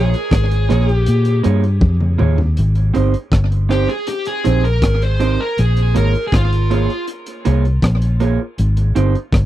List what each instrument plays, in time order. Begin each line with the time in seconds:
Already playing: fingered electric bass A#1, clean electric guitar A#3 F4 G#4 C#5, lead electric guitar G#4
0.14 closed hi-hat
0.31 fingered electric bass G#1, kick, cross-stick, closed hi-hat
0.51 closed hi-hat
0.69 fingered electric bass A#1, clean electric guitar A#3 F4 G#4 C#5, cross-stick, closed hi-hat
0.89 lead electric guitar G4, closed hi-hat
1.06 fingered electric bass A#2, closed hi-hat
1.25 closed hi-hat
1.43 fingered electric bass G2, clean electric guitar A#3 F4 G#4 C#5, closed hi-hat
1.64 closed hi-hat
1.81 fingered electric bass F2, kick, high tom
2.01 mid tom
2.18 fingered electric bass D#2, clean electric guitar A#3 F4 G#4 C#5, mid tom
2.38 floor tom
2.57 fingered electric bass G#1, closed hi-hat
2.75 closed hi-hat
2.94 fingered electric bass G1, clean electric guitar C4 D#4 G4 C5, closed hi-hat
3.14 closed hi-hat
3.32 fingered electric bass G1, kick, cross-stick, closed hi-hat
3.52 closed hi-hat
3.69 clean electric guitar C4 D#4 G4 C5, lead electric guitar G4, cross-stick, closed hi-hat
3.89 lead electric guitar G#4, closed hi-hat
4.07 lead electric guitar G4, closed hi-hat
4.25 lead electric guitar G#4, closed hi-hat
4.44 fingered electric bass A#1, clean electric guitar C4 D#4 G4 C5, closed hi-hat
4.65 lead electric guitar A#4, closed hi-hat
4.82 fingered electric bass G#1, kick, cross-stick, closed hi-hat
5.02 lead electric guitar C5, closed hi-hat
5.20 clean electric guitar C4 D#4 G4 C5, closed hi-hat
5.41 lead electric guitar A#4
5.58 fingered electric bass A#1, lead electric guitar G#4, closed hi-hat
5.77 closed hi-hat
5.94 fingered electric bass G#1, clean electric guitar A#3 F4 G#4 C#5, lead electric guitar A#4, closed hi-hat
6.15 closed hi-hat
6.27 lead electric guitar G#4
6.32 fingered electric bass G#1, lead electric guitar F4, kick, cross-stick, closed hi-hat
6.53 closed hi-hat
6.70 clean electric guitar A#3 F4 G#4 C#5, closed hi-hat
6.90 closed hi-hat
7.07 closed hi-hat
7.26 closed hi-hat
7.45 fingered electric bass C2, clean electric guitar A#3 F4 G#4 C#5, closed hi-hat
7.65 closed hi-hat
7.82 fingered electric bass A#1, kick, cross-stick, closed hi-hat
8.02 closed hi-hat
8.20 clean electric guitar A#3 F4 G#4 C#5, closed hi-hat
8.58 fingered electric bass G#1, closed hi-hat
8.77 closed hi-hat
8.95 fingered electric bass G1, clean electric guitar C4 D#4 G4 C5, closed hi-hat
9.15 closed hi-hat
9.32 fingered electric bass G1, kick, cross-stick, closed hi-hat